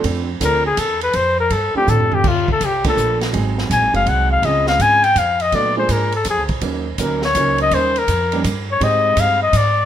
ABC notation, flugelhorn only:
X:1
M:3/4
L:1/8
Q:"Swing" 1/4=164
K:F
V:1 name="Flugelhorn"
z2 B _A =A =B | c B A G A G | [K:Eblyd] F A G A2 z | z2 _a f _g f |
e f _a g f e | d c B A _A z | z2 B _d2 e | c B3 z _d |
e2 f e d2 |]